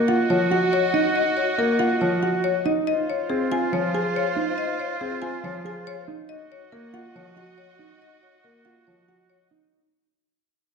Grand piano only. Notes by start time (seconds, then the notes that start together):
Already playing: A#3
0.30 F3
1.58 A#3
2.01 F3
3.30 C4
3.73 F3
5.01 C4
5.44 F3
6.72 A#3
7.15 F3
8.44 A#3
8.88 F3